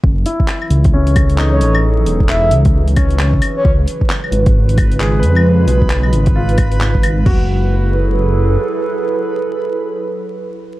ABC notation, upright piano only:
X:1
M:4/4
L:1/16
Q:"Swing 16ths" 1/4=133
K:F#m
V:1 name="Upright piano"
z2 E6 C4 ^D4- | ^D3 z6 z C6- | C z8 z3 G B3- | B4 z4 ^E6- E z |
F16- | F16 |]